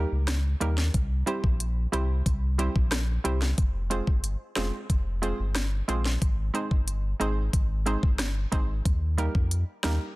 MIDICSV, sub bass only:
0, 0, Header, 1, 2, 480
1, 0, Start_track
1, 0, Key_signature, -4, "minor"
1, 0, Tempo, 659341
1, 686, Time_signature, 4, 2, 24, 8
1, 7394, End_track
2, 0, Start_track
2, 0, Title_t, "Sub bass"
2, 0, Program_c, 0, 38
2, 86, Note_on_c, 0, 37, 89
2, 400, Note_off_c, 0, 37, 0
2, 446, Note_on_c, 0, 39, 93
2, 655, Note_off_c, 0, 39, 0
2, 686, Note_on_c, 0, 36, 114
2, 895, Note_off_c, 0, 36, 0
2, 1046, Note_on_c, 0, 34, 89
2, 1360, Note_off_c, 0, 34, 0
2, 1406, Note_on_c, 0, 36, 99
2, 1615, Note_off_c, 0, 36, 0
2, 1645, Note_on_c, 0, 36, 105
2, 1959, Note_off_c, 0, 36, 0
2, 2007, Note_on_c, 0, 34, 96
2, 2320, Note_off_c, 0, 34, 0
2, 2366, Note_on_c, 0, 36, 94
2, 2575, Note_off_c, 0, 36, 0
2, 2606, Note_on_c, 0, 29, 115
2, 2920, Note_off_c, 0, 29, 0
2, 2966, Note_on_c, 0, 31, 88
2, 3175, Note_off_c, 0, 31, 0
2, 3326, Note_on_c, 0, 29, 85
2, 3431, Note_off_c, 0, 29, 0
2, 3565, Note_on_c, 0, 29, 98
2, 3879, Note_off_c, 0, 29, 0
2, 3926, Note_on_c, 0, 31, 82
2, 4240, Note_off_c, 0, 31, 0
2, 4286, Note_on_c, 0, 34, 97
2, 4495, Note_off_c, 0, 34, 0
2, 4526, Note_on_c, 0, 32, 117
2, 4735, Note_off_c, 0, 32, 0
2, 4886, Note_on_c, 0, 31, 92
2, 5200, Note_off_c, 0, 31, 0
2, 5245, Note_on_c, 0, 32, 97
2, 5455, Note_off_c, 0, 32, 0
2, 5485, Note_on_c, 0, 32, 109
2, 5799, Note_off_c, 0, 32, 0
2, 5846, Note_on_c, 0, 31, 99
2, 6160, Note_off_c, 0, 31, 0
2, 6207, Note_on_c, 0, 32, 98
2, 6416, Note_off_c, 0, 32, 0
2, 6446, Note_on_c, 0, 39, 103
2, 6760, Note_off_c, 0, 39, 0
2, 6806, Note_on_c, 0, 41, 88
2, 7015, Note_off_c, 0, 41, 0
2, 7166, Note_on_c, 0, 39, 97
2, 7270, Note_off_c, 0, 39, 0
2, 7394, End_track
0, 0, End_of_file